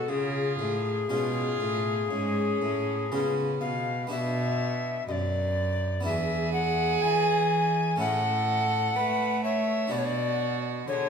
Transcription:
Already playing: F#4 A4
0.09 C#3 F4 G#4
0.59 A2
1.09 B2 G#3 C#4 F4
1.60 A2
2.11 G#2 C#4
2.62 A2
3.12 C#3 G#3 B3 C#4 F4
3.61 B2 F5
4.07 B3 D4 F#4 E5
4.11 B2
5.08 F#2 D#5
5.12 D5
6.01 B3 D4 E4
6.05 E2 G#4 E5
6.53 F#5
7.02 E3 G#5
7.96 A3 C#4 E4 A4 F#5
8.00 A2
8.96 A3 B4
9.44 C#5 E5
9.88 D4 F#4 B4 D5
9.92 B2 F#4
9.99 C#5
10.05 D5
10.88 D3 G#4 C#5

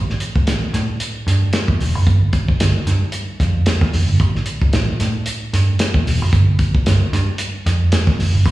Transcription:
Already playing: A1
0.10 snare
0.20 closed hi-hat
0.36 C#2, kick
0.47 A1, snare, closed hi-hat
0.73 A2, snare, closed hi-hat
1.00 closed hi-hat
1.27 G2, snare, closed hi-hat
1.53 snare, closed hi-hat
1.68 E2, kick
1.80 E1, snare, open hi-hat
1.95 F#1
2.07 G1, kick, closed hi-hat
2.33 kick, closed hi-hat
2.48 C2, kick
2.60 G1, snare, closed hi-hat
2.87 G2, snare, closed hi-hat
3.12 closed hi-hat
3.40 F2, kick, snare, closed hi-hat
3.66 snare, closed hi-hat
3.81 E2, kick, snare
3.93 F1, snare, open hi-hat
4.08 G1
4.20 A1, kick, closed hi-hat
4.35 snare
4.46 closed hi-hat
4.62 C#2, kick
4.73 A1, snare, closed hi-hat
5.00 A2, snare, closed hi-hat
5.26 closed hi-hat
5.53 G2, snare, closed hi-hat
5.79 snare, closed hi-hat
5.94 E2, kick
6.06 E1, snare, open hi-hat
6.22 F#1
6.33 G1, kick, closed hi-hat
6.59 kick, closed hi-hat
6.74 C2, kick
6.86 G1, snare, closed hi-hat
7.13 G2, snare, closed hi-hat
7.38 closed hi-hat
7.66 F2, snare, closed hi-hat
7.92 snare, closed hi-hat
8.07 E2, kick, snare
8.19 F1, snare, open hi-hat
8.34 G1
8.45 A1, kick, closed hi-hat

